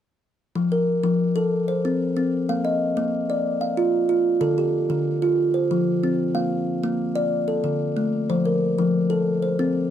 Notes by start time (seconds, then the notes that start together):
0.55 F3
0.72 A#4
1.04 F3
1.36 A4
1.68 C5
1.85 C4
2.17 C4
2.49 A#3 F5
2.65 D#5
2.97 A#3
3.30 D5
3.61 F5
3.77 F4
4.09 F4
4.41 D3 A4
4.58 G4
4.90 D3
5.22 F4
5.54 C5
5.71 F3
6.03 C4
6.35 A#3 F5
6.83 A#3
7.16 D5
7.48 A4
7.64 D3
7.97 A3
8.30 F3 C5
8.45 A#4
8.78 F3
9.10 A4
9.42 C5
9.59 C4